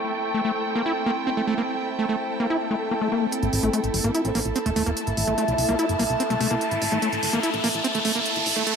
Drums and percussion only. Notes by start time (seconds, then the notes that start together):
3.32 closed hi-hat
3.43 closed hi-hat
3.53 open hi-hat
3.63 closed hi-hat
3.73 closed hi-hat
3.84 closed hi-hat
3.94 open hi-hat
4.04 closed hi-hat
4.15 closed hi-hat
4.25 closed hi-hat
4.35 open hi-hat
4.45 closed hi-hat
4.56 closed hi-hat
4.66 closed hi-hat
4.76 open hi-hat
4.86 closed hi-hat
4.97 closed hi-hat
5.07 closed hi-hat
5.17 open hi-hat
5.38 closed hi-hat
5.48 closed hi-hat
5.58 open hi-hat
5.69 closed hi-hat
5.79 closed hi-hat
5.89 closed hi-hat
5.99 open hi-hat
6.10 closed hi-hat
6.20 closed hi-hat
6.30 closed hi-hat
6.41 open hi-hat
6.51 closed hi-hat
6.61 closed hi-hat
6.71 closed hi-hat
6.82 open hi-hat
6.92 closed hi-hat
7.02 closed hi-hat
7.12 closed hi-hat
7.23 open hi-hat
7.33 closed hi-hat
7.43 closed hi-hat
7.54 closed hi-hat
7.64 open hi-hat
7.74 closed hi-hat
7.84 closed hi-hat
7.95 closed hi-hat
8.05 open hi-hat
8.15 closed hi-hat
8.26 closed hi-hat
8.36 closed hi-hat
8.46 open hi-hat
8.56 closed hi-hat
8.67 closed hi-hat